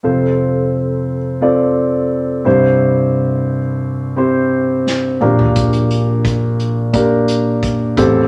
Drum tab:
HH |----------------|----------------|xxx-x-x-x-x-x-x-|
SD |----------------|------------o---|----------------|
T2 |----------------|--------------o-|----------------|
FT |----------------|---------------o|----------------|
BD |----------------|----------------|o---o---o---o-o-|